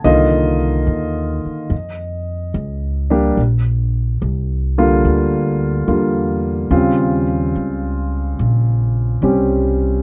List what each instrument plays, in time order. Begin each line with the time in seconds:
0.04 upright bass C2, grand piano D3 D#3 A#3 F4 D#5
0.87 upright bass D#2
1.45 muted upright bass stroke
1.70 upright bass F2
2.54 upright bass C#2
3.10 grand piano G3 A#3 D4 G4
3.37 upright bass A#1
4.22 upright bass C2
4.78 grand piano D3 G3 A#3 F4
5.05 upright bass D2
5.87 upright bass E2, grand piano D3 G3 A#3 F4
6.71 upright bass D#2, grand piano C#3 G3 C4 F4
7.55 upright bass C#2
8.39 upright bass A#1
9.22 upright bass C2, grand piano G3 C4 C#4 G4